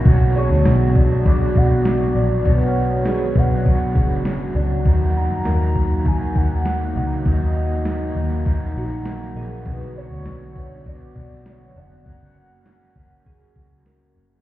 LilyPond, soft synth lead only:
\new Staff \with { instrumentName = "Soft synth lead" } { \time 4/4 \key b \lydian \tempo 4 = 100 r8 cis''4 r8 d''8 fis''8 d''4 | cis''4 cis''8 fis''2 r8 | r8 ais''4. gis''8 fis''4. | dis''2 r2 |
r8 cis''4. d''4 cis''8 fis''8~ | fis''2. r4 | }